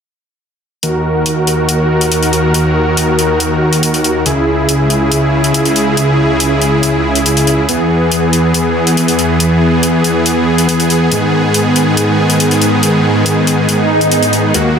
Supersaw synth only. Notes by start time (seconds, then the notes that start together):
0.83 D#2 D#3 F#4 A#4
4.26 C#2 C#3 E4 G#4
7.69 E2 E3 B3 G#4
11.12 G#2 D#3
14.54 D#2 D#3 A#3 F#4